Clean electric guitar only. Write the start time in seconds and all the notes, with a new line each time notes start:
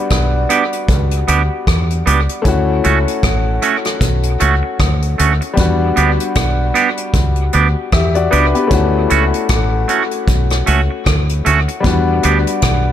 0.49 B3 D4 G4
1.28 B3 D4 G4
2.06 B3 D4 G4
2.84 A3 C#4 F#4
3.62 A3 C#4 F#4
4.40 A3 C#4 F#4
4.63 muted clean electric guitar stroke
5.18 A3 C#4 F#4
5.41 muted clean electric guitar stroke
5.96 B3 D4 G4
6.74 B3 D4 G4
7.53 B3 D4 G4
8.31 B3 D4 G4
9.10 A3 C#4 F#4
9.88 A3 C#4 F#4
10.66 A3 C#4 F#4
10.91 muted clean electric guitar stroke
11.45 A3 C#4 F#4
11.68 muted clean electric guitar stroke
12.23 B3 D4 G4